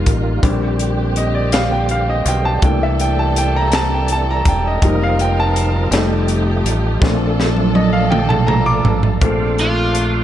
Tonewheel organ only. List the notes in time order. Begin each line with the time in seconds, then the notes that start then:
Already playing: D#3 G3 A#3 F4
0.43 D3 G3 C4 G4
2.64 E3 D4 A4
4.81 F3 C4 D#4 A#4
5.91 A3 D#4 G4
7.02 A3 D4 A4
9.21 A3 C5 D5 F5